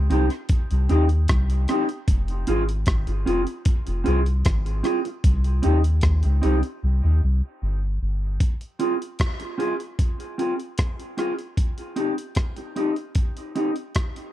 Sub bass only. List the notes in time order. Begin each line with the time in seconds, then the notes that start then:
0.10 C2
0.71 C2
0.90 D#2
1.30 C2
2.08 F1
2.48 G#1
2.88 G#1
3.08 G1
3.27 F1
3.87 F1
4.07 C2
4.46 G#1
5.24 C2
5.65 D#2
6.04 D#2
6.24 C#2
6.44 C2
6.83 C2
7.04 D#2
7.23 C2
7.62 G1
8.02 G1